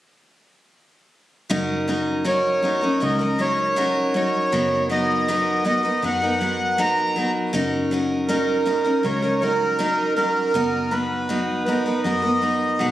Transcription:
1.50 F#1 F#3 C#4 D#4 A#4
1.88 F#3 C#4 D#4 A#4
2.24 F#3 C#4 D#4 A#4 C#5
2.62 F#3 C#4 D#4 A#4
2.81 C#4 D#4 A#4
3.00 C#2 F#3 C#4 D#4 A#4 D#5
3.19 C#4 D#4 A#4
3.38 F#3 C#4 D#4 A#4 C#5
3.76 F#3 C#4 D#4 A#4
4.14 F#3 C#4 D#4 A#4 C#5
4.52 F#1 F#3 B3 D#4 A#4
4.89 F#3 B3 D#4 A#4 D#5
5.28 F#3 B3 D#4 A#4
5.65 F#3 B3 D#4 A#4 D#5
5.83 B3 D#4 A#4
6.02 F#2 F#3 B3 D#4 A#4 F#5
6.22 B3 D#4 A#4
6.41 F#3 B3 D#4 A#4
6.78 F#3 B3 D#4 A#4 A#5
7.16 F#3 B3 D#4 A#4
7.53 F#1 F#3 C#4 D#4 A#4
7.91 F#3 C#4 D#4 A#4
8.28 F#3 C#4 D#4 A#4
8.66 F#3 C#4 D#4 A#4
8.84 C#4 D#4 A#4
9.03 C#2 F#3 C#4 D#4 A#4 C#5
9.22 C#4 D#4 A#4
9.41 F#3 C#4 D#4 A#4
9.79 F#3 C#4 D#4 A#4
10.15 F#3 C#4 D#4 A#4
10.54 F#1 F#3 B3 D#4 A#4
10.91 F#3 B3 D#4 B4
11.29 F#3 B3 D#4
11.65 F#3 B3 D#4 A#4 B4
11.86 B3 D#4 A#4
12.03 F#2 F#3 B3 D#4 A#4 D#5
12.22 B3 D#4 A#4
12.41 F#3 B3 D#4 A#4
12.79 B1 F#3 B3 D#4 A#4 F#5

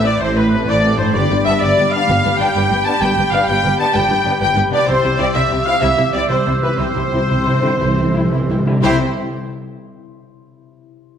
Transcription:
Already playing: A1 A2 A3 E4 A4 B4 G5
0.04 E4 C5 D5
0.19 A1 A2 C4 A4 C5
0.36 E4 B4 C5
0.52 C4 A4
0.66 A1 A2 E4 A4 C5 D5 A5
0.83 C4 A4
0.96 G2 E4 C5
1.01 D4
1.06 G4
1.10 G4 B4 D5
1.14 G1 G2 G4 B4 D5 B5
1.30 G1 G2 G4 B4
1.44 G1 G2 B3 D4 G4 B4 E5
1.61 G1 G2 G4 B4 D5
1.77 G1 G2 G4 B4
1.91 D4 F5
1.95 B3
2.08 G1 G2 G4 B4
2.23 G1 G2 G4 B4
2.39 G1 G2 B3 D4 G4 B4 G5
2.54 G1 G2 G4 B4
2.70 G1 G2 G4 B4
2.85 B3 D4 A5
3.00 G1 G2 G4 B4 G5
3.16 G1 G2 G4 B4
3.31 G1 G2 B3 D4 G4 B4 F5
3.46 G1 G2 G4 B4 G5
3.63 G1 G2 G4 B4
3.78 B3 D4 A5
3.93 G1 G2 G4 B4 G5
4.09 G1 G2 G4 B4
4.24 G1 G2 B3 D4 G4 B4
4.40 G1 G2 G4 B4 G5
4.56 G1 G2 G4 B4
4.70 C3 B3 D4 D5
4.75 E4
4.79 G4
4.84 E4 G4 C5
4.88 C2 C3 G4 C5 E6
4.95 C3
5.03 C2 C3 E4 G4
5.10 C3
5.17 C2 C3 C4 E4 G4 D5
5.21 D5
5.33 C2 C3 E4 G4 E5
5.40 C3
5.47 C3 E4 G4
5.52 C2 C3
5.62 C3 F5
5.66 C3 C4 E4 F5
5.77 C3 G4 E5
5.82 C2 C3 E4 E5
5.92 C3
5.97 C2 C3 E4 G4
6.08 C3
6.12 C2 C3 C4 E4 G4 D5
6.22 C3
6.29 C2 C3 E4 G4 C5
6.36 C3
6.44 C2 C3 E4 G4
6.52 C3
6.59 C3 C4 E4 B4
6.67 C3
6.76 C2 C3 E4 G4 C5
6.84 C3
6.91 C3
6.95 C2 C3 E4 G4
7.05 C3
7.12 C2 C3 C4 E4 G4
7.20 C3
7.28 C2 C3 E4 G4
7.37 C3
7.45 C2 C3 E4 G4
7.53 C3
7.62 C3 D3 C4 E4
7.69 C3
7.77 C2 C3 E3 E4 G4
7.86 C3
7.94 C2 C3 E4 G4
8.02 C3
8.10 C3
8.14 C2 F3 C4 E4 G4
8.19 C3
8.27 C2 C3
8.31 C3 E3 E4 G4
8.42 C3
8.48 C2 C3 E4 G4
8.58 C3
8.66 C3 D3 C4 E4
8.80 C2 C3 C4 E4 G4 C5 C6
8.85 C4 E4 G5

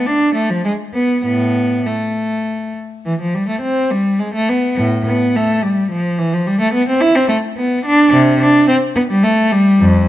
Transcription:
0.06 D4
0.35 A3
0.50 F3
0.65 G#3
0.94 B3
1.25 A2 B3
1.86 A3
3.06 E3
3.21 F3
3.34 G3
3.48 A3
3.61 C4
3.91 G3
4.19 G#3
4.34 A3
4.49 B3
4.78 A2
5.07 B3
5.36 A3
5.63 G3
5.91 F3
6.18 E3
6.33 F3
6.47 G3
6.61 A3
6.73 B3
6.89 C4
7.01 E4
7.15 C4
7.29 A3
7.57 B3
7.86 D4
8.13 C3
8.40 D4
8.68 C4
8.96 B3
9.10 G3
9.23 A3
9.52 G3
9.79 F2

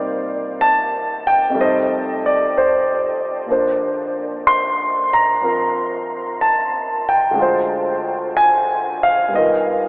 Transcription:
Already playing: C3 G3 A#3 D#4 D5
0.61 A5
1.27 G5
1.50 F2 C3
1.54 G3 A3 D#4
1.60 C5 D#5
2.26 D5
2.58 C5
3.46 A#2 F3 A#3
3.50 D4 C5
4.47 C6
5.13 A#5
5.41 F3 C4 A#4
6.41 A5
7.09 G5
7.31 D2 D3
7.36 G#3 F4
7.42 C5
8.37 G#5
9.03 F5
9.28 G2 G3 B3
9.34 D#4 F4 A#4 D#5

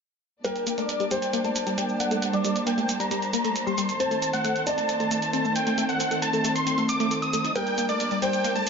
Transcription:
0.44 G3 A#3 D4 A#4 D5 G5 A5, closed hi-hat, shaker
0.56 closed hi-hat, shaker
0.67 A#3, closed hi-hat, shaker
0.78 A3 D5, closed hi-hat, shaker
0.89 closed hi-hat, shaker
1.00 G3, closed hi-hat, shaker
1.11 G3 C5 G5, closed hi-hat, shaker
1.22 closed hi-hat, shaker
1.33 A#3, closed hi-hat, shaker
1.44 A3 A5, closed hi-hat, shaker
1.56 closed hi-hat, shaker
1.67 G3, closed hi-hat, shaker
1.78 G3 G5, closed hi-hat, shaker
1.89 shaker
2.00 A#3 F#5, closed hi-hat, shaker
2.11 A3, closed hi-hat, shaker
2.22 C5, closed hi-hat, shaker
2.33 G3 D5, closed hi-hat, shaker
2.44 G3, closed hi-hat, shaker
2.56 closed hi-hat, shaker
2.67 A#3 G5, closed hi-hat, shaker
2.78 A3, closed hi-hat, shaker
2.89 closed hi-hat, shaker
3.00 G3 A#5, closed hi-hat, shaker
3.11 G3, closed hi-hat, shaker
3.22 closed hi-hat, shaker
3.33 A#3 A#5, closed hi-hat, shaker
3.44 A3, closed hi-hat, shaker
3.56 closed hi-hat, shaker
3.67 G3 C6, shaker
3.78 G3, closed hi-hat, shaker
3.89 closed hi-hat, shaker
4.00 D#3 A3 C4 C5 A5, closed hi-hat, shaker
4.11 A3, closed hi-hat, shaker
4.22 closed hi-hat, shaker
4.33 A3 F#5, closed hi-hat, shaker
4.44 A3, closed hi-hat, shaker
4.56 closed hi-hat, shaker
4.67 C4 D5 A5, closed hi-hat, shaker
4.78 A3, closed hi-hat, shaker
4.89 closed hi-hat, shaker
5.00 A3 A5, closed hi-hat, shaker
5.11 A3, closed hi-hat, shaker
5.22 closed hi-hat, shaker
5.33 C4 A5, closed hi-hat, shaker
5.45 A3, shaker
5.56 G5, closed hi-hat, shaker
5.67 A3, closed hi-hat, shaker
5.78 A3, closed hi-hat, shaker
5.89 F#5, closed hi-hat, shaker
6.00 C4, closed hi-hat, shaker
6.11 A3, closed hi-hat, shaker
6.22 A5, closed hi-hat, shaker
6.33 A3, closed hi-hat, shaker
6.45 A3, closed hi-hat, shaker
6.55 C6, closed hi-hat, shaker
6.67 C4, closed hi-hat, shaker
6.78 A3, closed hi-hat, shaker
6.89 D6, closed hi-hat, shaker
7.00 A3, closed hi-hat, shaker
7.11 A4, closed hi-hat, shaker
7.22 D#6, closed hi-hat, shaker
7.33 A3, closed hi-hat, shaker
7.45 D#4, closed hi-hat, shaker
7.55 G3 A#3 D4 A#4 D5 G5 A5, closed hi-hat, shaker
7.67 closed hi-hat, shaker
7.78 A#3, closed hi-hat, shaker
7.89 A3 D5, closed hi-hat, shaker
8.00 closed hi-hat, shaker
8.11 G3, closed hi-hat, shaker
8.22 G3 C5 G5, closed hi-hat, shaker
8.33 closed hi-hat, shaker
8.44 A#3, closed hi-hat, shaker
8.56 A3 A5, closed hi-hat, shaker

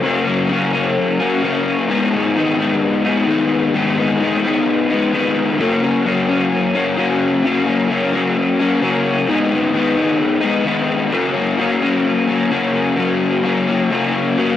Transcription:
0.03 F#2 C#3 F#3 A#3 C#4
0.26 F#3 A#3 C#4
0.49 C#3 F#3 A#3 C#4
0.73 F#3 A#3 C#4
1.19 F#3 A#3 C#4
1.43 C#3 F#3 A#3 C#4
1.89 G#2 D#3 G#3 B3 D#4
2.13 G#3 B3 D#4
2.36 D#3 G#3 B3 D#4
2.58 G#3 B3 D#4
3.04 G#3 B3 D#4
3.27 D#3 G#3 B3 D#4
3.74 G#2 D#3 G#3 B3 D#4
3.97 G#3 B3 D#4
4.20 D#3 G#3 B3 D#4
4.43 G#3 B3 D#4
4.90 G#3 B3 D#4
5.13 D#3 G#3 B3 D#4
5.58 F#2 C#3 F#3 A#3 C#4
5.82 F#3 A#3 C#4
6.05 C#3 F#3 A#3 C#4
6.28 F#3 A#3 C#4
6.73 F#3 A#3 C#4
6.96 C#3 F#3 A#3 C#4
7.43 F#2 C#3 F#3 A#3 C#4
7.66 F#3 A#3 C#4
7.89 C#3 F#3 A#3 C#4
8.13 F#3 A#3 C#4
8.60 F#3 A#3 C#4
8.81 C#3 F#3 A#3 C#4
9.28 G#2 D#3 G#3 B3 D#4
9.51 G#3 B3 D#4
9.73 D#3 G#3 B3 D#4
9.96 G#3 B3 D#4
10.41 G#3 B3 D#4
10.64 D#3 G#3 B3 D#4
11.11 F#2 C#3 F#3 A#3 C#4
11.33 F#3 A#3 C#4
11.57 C#3 F#3 A#3 C#4
11.82 F#3 A#3 C#4
12.27 F#3 A#3 C#4
12.51 C#3 F#3 A#3 C#4
12.97 F#2 C#3 F#3 A#3 C#4
13.43 C#3 F#3 A#3 C#4
13.67 F#3 A#3 C#4
13.90 F#2 C#3 F#3 A#3 C#4
14.37 C#3 F#3 A#3 C#4

